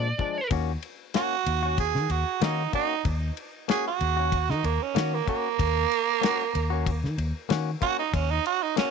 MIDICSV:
0, 0, Header, 1, 6, 480
1, 0, Start_track
1, 0, Key_signature, -6, "minor"
1, 0, Tempo, 635526
1, 385, Time_signature, 4, 2, 24, 8
1, 6727, End_track
2, 0, Start_track
2, 0, Title_t, "Lead electric guitar"
2, 0, Program_c, 0, 29
2, 0, Note_on_c, 0, 74, 101
2, 366, Note_off_c, 0, 74, 0
2, 6727, End_track
3, 0, Start_track
3, 0, Title_t, "Tenor saxophone"
3, 0, Program_c, 1, 66
3, 873, Note_on_c, 1, 66, 95
3, 1335, Note_off_c, 1, 66, 0
3, 1358, Note_on_c, 1, 68, 83
3, 1596, Note_on_c, 1, 66, 81
3, 1607, Note_off_c, 1, 68, 0
3, 1834, Note_on_c, 1, 63, 83
3, 1846, Note_off_c, 1, 66, 0
3, 2063, Note_off_c, 1, 63, 0
3, 2073, Note_on_c, 1, 63, 98
3, 2302, Note_off_c, 1, 63, 0
3, 2794, Note_on_c, 1, 68, 91
3, 2910, Note_off_c, 1, 68, 0
3, 2926, Note_on_c, 1, 66, 89
3, 3402, Note_on_c, 1, 63, 85
3, 3413, Note_off_c, 1, 66, 0
3, 3513, Note_on_c, 1, 58, 84
3, 3524, Note_off_c, 1, 63, 0
3, 3644, Note_on_c, 1, 61, 84
3, 3655, Note_off_c, 1, 58, 0
3, 3883, Note_on_c, 1, 58, 84
3, 3894, Note_off_c, 1, 61, 0
3, 3982, Note_off_c, 1, 58, 0
3, 3995, Note_on_c, 1, 58, 118
3, 5400, Note_off_c, 1, 58, 0
3, 5908, Note_on_c, 1, 66, 110
3, 6026, Note_off_c, 1, 66, 0
3, 6036, Note_on_c, 1, 63, 81
3, 6149, Note_on_c, 1, 61, 92
3, 6161, Note_off_c, 1, 63, 0
3, 6276, Note_on_c, 1, 63, 91
3, 6287, Note_off_c, 1, 61, 0
3, 6378, Note_off_c, 1, 63, 0
3, 6392, Note_on_c, 1, 66, 100
3, 6515, Note_on_c, 1, 63, 87
3, 6527, Note_off_c, 1, 66, 0
3, 6618, Note_off_c, 1, 63, 0
3, 6633, Note_on_c, 1, 61, 83
3, 6727, Note_off_c, 1, 61, 0
3, 6727, End_track
4, 0, Start_track
4, 0, Title_t, "Clean electric guitar"
4, 0, Program_c, 2, 27
4, 140, Note_on_c, 2, 53, 65
4, 150, Note_on_c, 2, 56, 65
4, 158, Note_on_c, 2, 62, 67
4, 293, Note_off_c, 2, 53, 0
4, 298, Note_off_c, 2, 56, 0
4, 302, Note_off_c, 2, 62, 0
4, 382, Note_on_c, 2, 58, 80
4, 389, Note_on_c, 2, 61, 81
4, 395, Note_on_c, 2, 66, 77
4, 534, Note_off_c, 2, 58, 0
4, 538, Note_off_c, 2, 61, 0
4, 541, Note_off_c, 2, 66, 0
4, 864, Note_on_c, 2, 58, 73
4, 870, Note_on_c, 2, 61, 83
4, 876, Note_on_c, 2, 66, 79
4, 1015, Note_off_c, 2, 58, 0
4, 1019, Note_off_c, 2, 61, 0
4, 1021, Note_off_c, 2, 66, 0
4, 1229, Note_on_c, 2, 66, 56
4, 1249, Note_on_c, 2, 61, 44
4, 1368, Note_off_c, 2, 66, 0
4, 1378, Note_off_c, 2, 61, 0
4, 1823, Note_on_c, 2, 58, 75
4, 1831, Note_on_c, 2, 61, 74
4, 1835, Note_on_c, 2, 66, 81
4, 1975, Note_off_c, 2, 58, 0
4, 1979, Note_off_c, 2, 61, 0
4, 1981, Note_off_c, 2, 66, 0
4, 2060, Note_on_c, 2, 58, 51
4, 2072, Note_on_c, 2, 61, 58
4, 2079, Note_on_c, 2, 66, 56
4, 2213, Note_off_c, 2, 58, 0
4, 2220, Note_off_c, 2, 61, 0
4, 2223, Note_off_c, 2, 66, 0
4, 2782, Note_on_c, 2, 58, 70
4, 2790, Note_on_c, 2, 61, 83
4, 2796, Note_on_c, 2, 66, 89
4, 2934, Note_off_c, 2, 58, 0
4, 2938, Note_off_c, 2, 61, 0
4, 2941, Note_off_c, 2, 66, 0
4, 3147, Note_on_c, 2, 66, 54
4, 3167, Note_on_c, 2, 61, 43
4, 3287, Note_off_c, 2, 66, 0
4, 3297, Note_off_c, 2, 61, 0
4, 3738, Note_on_c, 2, 58, 75
4, 3746, Note_on_c, 2, 61, 81
4, 3752, Note_on_c, 2, 66, 93
4, 3892, Note_off_c, 2, 58, 0
4, 3896, Note_off_c, 2, 61, 0
4, 3899, Note_off_c, 2, 66, 0
4, 3974, Note_on_c, 2, 58, 54
4, 3987, Note_on_c, 2, 61, 53
4, 3995, Note_on_c, 2, 66, 61
4, 4130, Note_off_c, 2, 58, 0
4, 4137, Note_off_c, 2, 61, 0
4, 4141, Note_off_c, 2, 66, 0
4, 4694, Note_on_c, 2, 58, 91
4, 4701, Note_on_c, 2, 61, 86
4, 4708, Note_on_c, 2, 66, 98
4, 4850, Note_off_c, 2, 58, 0
4, 4854, Note_off_c, 2, 61, 0
4, 4857, Note_off_c, 2, 66, 0
4, 5062, Note_on_c, 2, 66, 66
4, 5079, Note_on_c, 2, 61, 56
4, 5204, Note_off_c, 2, 66, 0
4, 5213, Note_off_c, 2, 61, 0
4, 5658, Note_on_c, 2, 58, 82
4, 5665, Note_on_c, 2, 61, 91
4, 5670, Note_on_c, 2, 66, 98
4, 5812, Note_off_c, 2, 58, 0
4, 5815, Note_off_c, 2, 61, 0
4, 5818, Note_off_c, 2, 66, 0
4, 5897, Note_on_c, 2, 58, 56
4, 5905, Note_on_c, 2, 61, 59
4, 5916, Note_on_c, 2, 66, 62
4, 6052, Note_off_c, 2, 58, 0
4, 6056, Note_off_c, 2, 61, 0
4, 6061, Note_off_c, 2, 66, 0
4, 6619, Note_on_c, 2, 58, 79
4, 6625, Note_on_c, 2, 61, 84
4, 6631, Note_on_c, 2, 66, 84
4, 6727, Note_off_c, 2, 58, 0
4, 6727, Note_off_c, 2, 61, 0
4, 6727, Note_off_c, 2, 66, 0
4, 6727, End_track
5, 0, Start_track
5, 0, Title_t, "Fingered electric bass"
5, 0, Program_c, 3, 33
5, 0, Note_on_c, 3, 46, 89
5, 87, Note_off_c, 3, 46, 0
5, 386, Note_on_c, 3, 39, 88
5, 569, Note_off_c, 3, 39, 0
5, 1106, Note_on_c, 3, 39, 79
5, 1473, Note_on_c, 3, 51, 82
5, 1484, Note_off_c, 3, 39, 0
5, 1558, Note_off_c, 3, 51, 0
5, 1584, Note_on_c, 3, 39, 89
5, 1682, Note_off_c, 3, 39, 0
5, 1825, Note_on_c, 3, 51, 88
5, 2008, Note_off_c, 3, 51, 0
5, 2307, Note_on_c, 3, 39, 89
5, 2489, Note_off_c, 3, 39, 0
5, 3028, Note_on_c, 3, 39, 87
5, 3394, Note_on_c, 3, 51, 83
5, 3406, Note_off_c, 3, 39, 0
5, 3479, Note_off_c, 3, 51, 0
5, 3505, Note_on_c, 3, 39, 94
5, 3603, Note_off_c, 3, 39, 0
5, 3746, Note_on_c, 3, 51, 92
5, 3929, Note_off_c, 3, 51, 0
5, 4227, Note_on_c, 3, 39, 92
5, 4409, Note_off_c, 3, 39, 0
5, 4948, Note_on_c, 3, 39, 84
5, 5315, Note_on_c, 3, 51, 79
5, 5327, Note_off_c, 3, 39, 0
5, 5399, Note_off_c, 3, 51, 0
5, 5422, Note_on_c, 3, 39, 91
5, 5521, Note_off_c, 3, 39, 0
5, 5667, Note_on_c, 3, 51, 86
5, 5849, Note_off_c, 3, 51, 0
5, 6143, Note_on_c, 3, 39, 94
5, 6327, Note_off_c, 3, 39, 0
5, 6727, End_track
6, 0, Start_track
6, 0, Title_t, "Drums"
6, 144, Note_on_c, 9, 36, 83
6, 219, Note_off_c, 9, 36, 0
6, 382, Note_on_c, 9, 51, 80
6, 384, Note_on_c, 9, 36, 105
6, 458, Note_off_c, 9, 51, 0
6, 459, Note_off_c, 9, 36, 0
6, 623, Note_on_c, 9, 51, 59
6, 698, Note_off_c, 9, 51, 0
6, 862, Note_on_c, 9, 51, 84
6, 869, Note_on_c, 9, 38, 107
6, 937, Note_off_c, 9, 51, 0
6, 945, Note_off_c, 9, 38, 0
6, 1106, Note_on_c, 9, 51, 68
6, 1181, Note_off_c, 9, 51, 0
6, 1344, Note_on_c, 9, 51, 80
6, 1345, Note_on_c, 9, 36, 96
6, 1420, Note_off_c, 9, 36, 0
6, 1420, Note_off_c, 9, 51, 0
6, 1480, Note_on_c, 9, 38, 32
6, 1555, Note_off_c, 9, 38, 0
6, 1583, Note_on_c, 9, 51, 62
6, 1659, Note_off_c, 9, 51, 0
6, 1824, Note_on_c, 9, 51, 83
6, 1831, Note_on_c, 9, 38, 104
6, 1899, Note_off_c, 9, 51, 0
6, 1907, Note_off_c, 9, 38, 0
6, 2063, Note_on_c, 9, 51, 61
6, 2064, Note_on_c, 9, 36, 85
6, 2139, Note_off_c, 9, 51, 0
6, 2140, Note_off_c, 9, 36, 0
6, 2303, Note_on_c, 9, 51, 83
6, 2304, Note_on_c, 9, 36, 107
6, 2378, Note_off_c, 9, 51, 0
6, 2380, Note_off_c, 9, 36, 0
6, 2545, Note_on_c, 9, 51, 59
6, 2621, Note_off_c, 9, 51, 0
6, 2784, Note_on_c, 9, 51, 80
6, 2792, Note_on_c, 9, 38, 109
6, 2860, Note_off_c, 9, 51, 0
6, 2867, Note_off_c, 9, 38, 0
6, 3025, Note_on_c, 9, 51, 60
6, 3101, Note_off_c, 9, 51, 0
6, 3265, Note_on_c, 9, 36, 105
6, 3266, Note_on_c, 9, 51, 72
6, 3340, Note_off_c, 9, 36, 0
6, 3341, Note_off_c, 9, 51, 0
6, 3399, Note_on_c, 9, 38, 33
6, 3475, Note_off_c, 9, 38, 0
6, 3507, Note_on_c, 9, 51, 59
6, 3582, Note_off_c, 9, 51, 0
6, 3745, Note_on_c, 9, 51, 79
6, 3753, Note_on_c, 9, 38, 113
6, 3821, Note_off_c, 9, 51, 0
6, 3829, Note_off_c, 9, 38, 0
6, 3984, Note_on_c, 9, 36, 87
6, 3987, Note_on_c, 9, 51, 60
6, 4060, Note_off_c, 9, 36, 0
6, 4062, Note_off_c, 9, 51, 0
6, 4225, Note_on_c, 9, 36, 110
6, 4226, Note_on_c, 9, 51, 88
6, 4300, Note_off_c, 9, 36, 0
6, 4301, Note_off_c, 9, 51, 0
6, 4467, Note_on_c, 9, 51, 62
6, 4542, Note_off_c, 9, 51, 0
6, 4708, Note_on_c, 9, 51, 83
6, 4715, Note_on_c, 9, 38, 112
6, 4783, Note_off_c, 9, 51, 0
6, 4791, Note_off_c, 9, 38, 0
6, 4947, Note_on_c, 9, 51, 65
6, 5023, Note_off_c, 9, 51, 0
6, 5185, Note_on_c, 9, 36, 103
6, 5187, Note_on_c, 9, 51, 84
6, 5260, Note_off_c, 9, 36, 0
6, 5262, Note_off_c, 9, 51, 0
6, 5324, Note_on_c, 9, 38, 32
6, 5400, Note_off_c, 9, 38, 0
6, 5426, Note_on_c, 9, 51, 63
6, 5501, Note_off_c, 9, 51, 0
6, 5665, Note_on_c, 9, 51, 82
6, 5673, Note_on_c, 9, 38, 106
6, 5741, Note_off_c, 9, 51, 0
6, 5748, Note_off_c, 9, 38, 0
6, 5904, Note_on_c, 9, 36, 91
6, 5907, Note_on_c, 9, 51, 66
6, 5980, Note_off_c, 9, 36, 0
6, 5982, Note_off_c, 9, 51, 0
6, 6144, Note_on_c, 9, 36, 115
6, 6145, Note_on_c, 9, 51, 84
6, 6220, Note_off_c, 9, 36, 0
6, 6221, Note_off_c, 9, 51, 0
6, 6386, Note_on_c, 9, 51, 61
6, 6462, Note_off_c, 9, 51, 0
6, 6624, Note_on_c, 9, 51, 86
6, 6632, Note_on_c, 9, 38, 108
6, 6700, Note_off_c, 9, 51, 0
6, 6707, Note_off_c, 9, 38, 0
6, 6727, End_track
0, 0, End_of_file